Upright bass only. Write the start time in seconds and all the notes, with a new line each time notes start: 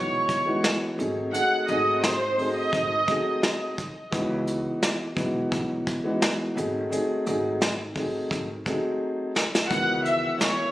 Already playing: B1
0.99 G#1
1.69 G#1
2.73 G#1
4.13 C#2
5.17 B1
5.52 B1
6.57 G#1
7.27 G#1
8.31 G#1
9.71 C#2